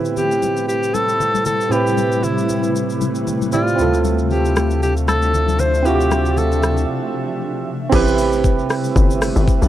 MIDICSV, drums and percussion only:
0, 0, Header, 1, 2, 480
1, 0, Start_track
1, 0, Key_signature, 0, "minor"
1, 0, Tempo, 517241
1, 1594, Time_signature, 4, 2, 24, 8
1, 8984, End_track
2, 0, Start_track
2, 0, Title_t, "Drums"
2, 45, Note_on_c, 9, 82, 47
2, 138, Note_off_c, 9, 82, 0
2, 154, Note_on_c, 9, 64, 58
2, 155, Note_on_c, 9, 82, 70
2, 247, Note_off_c, 9, 64, 0
2, 248, Note_off_c, 9, 82, 0
2, 290, Note_on_c, 9, 82, 49
2, 383, Note_off_c, 9, 82, 0
2, 393, Note_on_c, 9, 82, 87
2, 396, Note_on_c, 9, 63, 62
2, 486, Note_off_c, 9, 82, 0
2, 488, Note_off_c, 9, 63, 0
2, 526, Note_on_c, 9, 82, 50
2, 618, Note_off_c, 9, 82, 0
2, 641, Note_on_c, 9, 82, 73
2, 734, Note_off_c, 9, 82, 0
2, 772, Note_on_c, 9, 82, 55
2, 864, Note_off_c, 9, 82, 0
2, 877, Note_on_c, 9, 63, 72
2, 877, Note_on_c, 9, 82, 89
2, 970, Note_off_c, 9, 63, 0
2, 970, Note_off_c, 9, 82, 0
2, 1006, Note_on_c, 9, 82, 47
2, 1099, Note_off_c, 9, 82, 0
2, 1113, Note_on_c, 9, 64, 64
2, 1120, Note_on_c, 9, 82, 66
2, 1206, Note_off_c, 9, 64, 0
2, 1212, Note_off_c, 9, 82, 0
2, 1249, Note_on_c, 9, 63, 72
2, 1252, Note_on_c, 9, 82, 54
2, 1342, Note_off_c, 9, 63, 0
2, 1345, Note_off_c, 9, 82, 0
2, 1350, Note_on_c, 9, 82, 100
2, 1354, Note_on_c, 9, 64, 71
2, 1443, Note_off_c, 9, 82, 0
2, 1447, Note_off_c, 9, 64, 0
2, 1491, Note_on_c, 9, 82, 49
2, 1584, Note_off_c, 9, 82, 0
2, 1595, Note_on_c, 9, 82, 64
2, 1688, Note_off_c, 9, 82, 0
2, 1734, Note_on_c, 9, 82, 56
2, 1827, Note_off_c, 9, 82, 0
2, 1831, Note_on_c, 9, 63, 78
2, 1834, Note_on_c, 9, 82, 77
2, 1924, Note_off_c, 9, 63, 0
2, 1926, Note_off_c, 9, 82, 0
2, 1966, Note_on_c, 9, 82, 46
2, 2058, Note_off_c, 9, 82, 0
2, 2074, Note_on_c, 9, 64, 55
2, 2075, Note_on_c, 9, 82, 72
2, 2167, Note_off_c, 9, 64, 0
2, 2168, Note_off_c, 9, 82, 0
2, 2210, Note_on_c, 9, 82, 51
2, 2302, Note_off_c, 9, 82, 0
2, 2312, Note_on_c, 9, 82, 84
2, 2315, Note_on_c, 9, 63, 63
2, 2405, Note_off_c, 9, 82, 0
2, 2408, Note_off_c, 9, 63, 0
2, 2444, Note_on_c, 9, 82, 51
2, 2537, Note_off_c, 9, 82, 0
2, 2560, Note_on_c, 9, 82, 72
2, 2653, Note_off_c, 9, 82, 0
2, 2689, Note_on_c, 9, 82, 57
2, 2782, Note_off_c, 9, 82, 0
2, 2796, Note_on_c, 9, 82, 91
2, 2799, Note_on_c, 9, 63, 75
2, 2888, Note_off_c, 9, 82, 0
2, 2891, Note_off_c, 9, 63, 0
2, 2924, Note_on_c, 9, 82, 50
2, 3016, Note_off_c, 9, 82, 0
2, 3035, Note_on_c, 9, 64, 65
2, 3038, Note_on_c, 9, 82, 66
2, 3128, Note_off_c, 9, 64, 0
2, 3131, Note_off_c, 9, 82, 0
2, 3171, Note_on_c, 9, 63, 68
2, 3171, Note_on_c, 9, 82, 55
2, 3264, Note_off_c, 9, 63, 0
2, 3264, Note_off_c, 9, 82, 0
2, 3269, Note_on_c, 9, 82, 92
2, 3277, Note_on_c, 9, 64, 69
2, 3362, Note_off_c, 9, 82, 0
2, 3370, Note_off_c, 9, 64, 0
2, 3411, Note_on_c, 9, 82, 48
2, 3504, Note_off_c, 9, 82, 0
2, 3515, Note_on_c, 9, 82, 66
2, 3607, Note_off_c, 9, 82, 0
2, 3654, Note_on_c, 9, 82, 54
2, 3747, Note_off_c, 9, 82, 0
2, 3753, Note_on_c, 9, 63, 76
2, 3754, Note_on_c, 9, 82, 76
2, 3846, Note_off_c, 9, 63, 0
2, 3847, Note_off_c, 9, 82, 0
2, 3886, Note_on_c, 9, 82, 47
2, 3978, Note_off_c, 9, 82, 0
2, 3996, Note_on_c, 9, 64, 58
2, 3996, Note_on_c, 9, 82, 74
2, 4088, Note_off_c, 9, 64, 0
2, 4088, Note_off_c, 9, 82, 0
2, 4131, Note_on_c, 9, 82, 49
2, 4224, Note_off_c, 9, 82, 0
2, 4234, Note_on_c, 9, 82, 88
2, 4236, Note_on_c, 9, 63, 66
2, 4239, Note_on_c, 9, 37, 96
2, 4327, Note_off_c, 9, 82, 0
2, 4329, Note_off_c, 9, 63, 0
2, 4332, Note_off_c, 9, 37, 0
2, 4365, Note_on_c, 9, 82, 52
2, 4458, Note_off_c, 9, 82, 0
2, 4481, Note_on_c, 9, 82, 72
2, 4573, Note_off_c, 9, 82, 0
2, 4611, Note_on_c, 9, 82, 57
2, 4704, Note_off_c, 9, 82, 0
2, 4716, Note_on_c, 9, 37, 84
2, 4717, Note_on_c, 9, 63, 76
2, 4717, Note_on_c, 9, 82, 90
2, 4809, Note_off_c, 9, 37, 0
2, 4809, Note_off_c, 9, 63, 0
2, 4810, Note_off_c, 9, 82, 0
2, 4846, Note_on_c, 9, 82, 49
2, 4938, Note_off_c, 9, 82, 0
2, 4953, Note_on_c, 9, 64, 65
2, 4960, Note_on_c, 9, 82, 68
2, 5046, Note_off_c, 9, 64, 0
2, 5052, Note_off_c, 9, 82, 0
2, 5089, Note_on_c, 9, 63, 74
2, 5092, Note_on_c, 9, 82, 54
2, 5181, Note_off_c, 9, 63, 0
2, 5185, Note_off_c, 9, 82, 0
2, 5190, Note_on_c, 9, 82, 96
2, 5194, Note_on_c, 9, 64, 72
2, 5283, Note_off_c, 9, 82, 0
2, 5287, Note_off_c, 9, 64, 0
2, 5331, Note_on_c, 9, 82, 50
2, 5423, Note_off_c, 9, 82, 0
2, 5434, Note_on_c, 9, 82, 65
2, 5527, Note_off_c, 9, 82, 0
2, 5574, Note_on_c, 9, 82, 57
2, 5667, Note_off_c, 9, 82, 0
2, 5672, Note_on_c, 9, 63, 80
2, 5673, Note_on_c, 9, 82, 80
2, 5677, Note_on_c, 9, 37, 84
2, 5765, Note_off_c, 9, 63, 0
2, 5766, Note_off_c, 9, 82, 0
2, 5770, Note_off_c, 9, 37, 0
2, 5804, Note_on_c, 9, 82, 48
2, 5897, Note_off_c, 9, 82, 0
2, 5914, Note_on_c, 9, 64, 58
2, 5915, Note_on_c, 9, 82, 70
2, 6006, Note_off_c, 9, 64, 0
2, 6008, Note_off_c, 9, 82, 0
2, 6050, Note_on_c, 9, 82, 49
2, 6143, Note_off_c, 9, 82, 0
2, 6154, Note_on_c, 9, 82, 90
2, 6156, Note_on_c, 9, 63, 63
2, 6158, Note_on_c, 9, 37, 92
2, 6246, Note_off_c, 9, 82, 0
2, 6249, Note_off_c, 9, 63, 0
2, 6251, Note_off_c, 9, 37, 0
2, 6285, Note_on_c, 9, 82, 54
2, 6377, Note_off_c, 9, 82, 0
2, 7353, Note_on_c, 9, 82, 68
2, 7354, Note_on_c, 9, 36, 110
2, 7354, Note_on_c, 9, 49, 102
2, 7446, Note_off_c, 9, 82, 0
2, 7447, Note_off_c, 9, 36, 0
2, 7447, Note_off_c, 9, 49, 0
2, 7493, Note_on_c, 9, 82, 60
2, 7586, Note_off_c, 9, 82, 0
2, 7593, Note_on_c, 9, 46, 48
2, 7593, Note_on_c, 9, 82, 87
2, 7686, Note_off_c, 9, 46, 0
2, 7686, Note_off_c, 9, 82, 0
2, 7724, Note_on_c, 9, 82, 52
2, 7817, Note_off_c, 9, 82, 0
2, 7834, Note_on_c, 9, 36, 94
2, 7834, Note_on_c, 9, 82, 75
2, 7927, Note_off_c, 9, 36, 0
2, 7927, Note_off_c, 9, 82, 0
2, 7969, Note_on_c, 9, 82, 55
2, 8062, Note_off_c, 9, 82, 0
2, 8072, Note_on_c, 9, 46, 57
2, 8072, Note_on_c, 9, 82, 99
2, 8076, Note_on_c, 9, 37, 103
2, 8165, Note_off_c, 9, 46, 0
2, 8165, Note_off_c, 9, 82, 0
2, 8169, Note_off_c, 9, 37, 0
2, 8203, Note_on_c, 9, 82, 58
2, 8296, Note_off_c, 9, 82, 0
2, 8313, Note_on_c, 9, 36, 119
2, 8319, Note_on_c, 9, 82, 80
2, 8406, Note_off_c, 9, 36, 0
2, 8411, Note_off_c, 9, 82, 0
2, 8449, Note_on_c, 9, 82, 62
2, 8542, Note_off_c, 9, 82, 0
2, 8554, Note_on_c, 9, 37, 92
2, 8555, Note_on_c, 9, 46, 59
2, 8555, Note_on_c, 9, 82, 99
2, 8647, Note_off_c, 9, 37, 0
2, 8648, Note_off_c, 9, 46, 0
2, 8648, Note_off_c, 9, 82, 0
2, 8684, Note_on_c, 9, 82, 53
2, 8777, Note_off_c, 9, 82, 0
2, 8793, Note_on_c, 9, 36, 102
2, 8797, Note_on_c, 9, 82, 73
2, 8886, Note_off_c, 9, 36, 0
2, 8890, Note_off_c, 9, 82, 0
2, 8930, Note_on_c, 9, 82, 63
2, 8984, Note_off_c, 9, 82, 0
2, 8984, End_track
0, 0, End_of_file